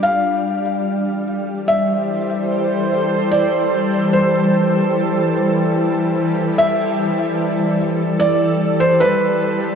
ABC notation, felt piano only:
X:1
M:4/4
L:1/16
Q:1/4=74
K:Flyd
V:1 name="Felt piano"
f8 e6 z2 | d4 c6 z6 | e6 z2 d3 c B4 |]